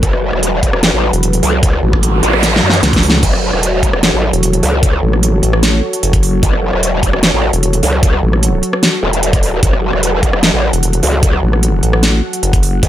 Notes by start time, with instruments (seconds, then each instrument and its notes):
Already playing: analog synth pad F#3 F#4 A4 B4
0.03 wobble bass F#1, kick, closed hi-hat
0.13 cross-stick
0.33 wobble bass E1, cross-stick
0.43 closed hi-hat
0.63 kick, closed hi-hat
0.73 cross-stick
0.83 snare, closed hi-hat
0.93 wobble bass A1
1.13 wobble bass E1, closed hi-hat
1.23 closed hi-hat
1.33 closed hi-hat
1.43 wobble bass C#2, open hi-hat
1.63 kick, closed hi-hat, noise sweep
1.73 cross-stick
1.83 wobble bass A1
1.93 kick, cross-stick
2.03 closed hi-hat
2.23 wobble bass A1, closed hi-hat
2.33 cross-stick
2.43 snare, closed hi-hat
2.56 snare
2.63 wobble bass F#2
2.70 snare, closed hi-hat
2.83 wobble bass C#2, snare, closed hi-hat
2.93 kick, snare, closed hi-hat
3.03 open hi-hat
3.10 snare
3.23 wobble bass F#1, analog synth pad C#5, kick, closed hi-hat, crash
3.33 cross-stick
3.53 wobble bass E1, cross-stick
3.63 closed hi-hat
3.83 kick, closed hi-hat
3.93 cross-stick
4.03 snare, closed hi-hat
4.13 wobble bass A1
4.33 wobble bass E1, closed hi-hat
4.43 closed hi-hat
4.53 closed hi-hat
4.63 wobble bass C#2, open hi-hat
4.83 kick, closed hi-hat
4.93 cross-stick
5.03 wobble bass A1
5.13 cross-stick
5.23 closed hi-hat
5.43 wobble bass A1, closed hi-hat
5.53 cross-stick
5.63 snare, closed hi-hat
5.93 closed hi-hat
6.03 wobble bass F#1, closed hi-hat
6.13 kick, closed hi-hat
6.23 open hi-hat
6.43 wobble bass F#1, kick, closed hi-hat
6.53 cross-stick
6.73 wobble bass E1, cross-stick
6.83 closed hi-hat
7.03 kick, closed hi-hat
7.13 cross-stick
7.23 snare, closed hi-hat
7.33 wobble bass A1
7.53 wobble bass E1, closed hi-hat
7.63 closed hi-hat
7.73 closed hi-hat
7.83 wobble bass C#2, open hi-hat
8.03 kick, closed hi-hat
8.13 cross-stick
8.23 wobble bass A1
8.33 cross-stick
8.43 closed hi-hat
8.63 closed hi-hat
8.73 cross-stick
8.83 snare, closed hi-hat
9.03 wobble bass E1
9.13 closed hi-hat
9.23 closed hi-hat
9.33 kick, closed hi-hat
9.43 wobble bass D#1, open hi-hat
9.63 wobble bass F#1, analog synth pad F#5, kick, closed hi-hat
9.73 cross-stick
9.93 wobble bass E1, cross-stick
10.03 closed hi-hat
10.23 kick, closed hi-hat
10.33 cross-stick
10.43 snare, closed hi-hat
10.53 wobble bass A1
10.73 wobble bass E1, closed hi-hat
10.83 closed hi-hat
10.93 closed hi-hat
11.03 wobble bass C#2, open hi-hat
11.23 kick, closed hi-hat
11.33 cross-stick
11.43 wobble bass A1
11.53 cross-stick
11.63 closed hi-hat
11.83 wobble bass A1, closed hi-hat
11.93 cross-stick
12.03 snare, closed hi-hat
12.33 closed hi-hat
12.43 wobble bass F#1, closed hi-hat
12.53 kick, closed hi-hat
12.63 open hi-hat
12.83 wobble bass F#1, kick, closed hi-hat